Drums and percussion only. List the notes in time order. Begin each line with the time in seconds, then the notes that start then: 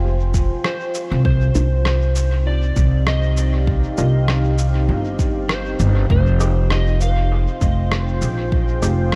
0.34 kick, shaker
0.64 cross-stick
0.95 shaker
1.25 kick
1.55 shaker
1.85 cross-stick
2.16 shaker
2.76 kick, shaker
3.07 cross-stick
3.37 shaker
3.67 kick
3.98 shaker
4.28 cross-stick
4.58 shaker
5.19 kick, shaker
5.49 cross-stick
5.80 shaker
6.10 kick
6.40 shaker
6.70 cross-stick
7.01 shaker
7.61 kick, shaker
7.92 cross-stick
8.22 shaker
8.52 kick
8.82 shaker